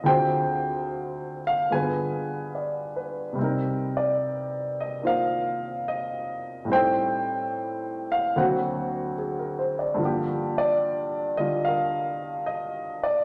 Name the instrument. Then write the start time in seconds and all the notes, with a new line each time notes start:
grand piano
0.04 D2 D3 C4 F4 G#4 G5
0.08 C5
1.47 F5
1.70 G2 D3 B3 F4 G#4 B4 G#5
2.55 D5
2.96 B4
3.33 C3 G3
3.39 C4 D#4
3.44 A#4
3.97 D5
4.80 D#5
5.02 A#3 D#4 F4 C5
5.07 A#4 F5
5.88 D#5
6.65 A2 G3
6.70 C4 D#4 C5 G5
6.76 A4
8.12 F5
8.36 D2 D3 F#3 A#3 C4 F#4 C5 F#5
9.18 G#4
9.39 A#4
9.59 C5
9.79 D5
9.94 G2 D3
9.99 F3 A#3
10.05 G4
10.58 D5
11.37 D3 G3 F4 D#5
11.65 A#4 F5
12.46 D#5
13.03 D5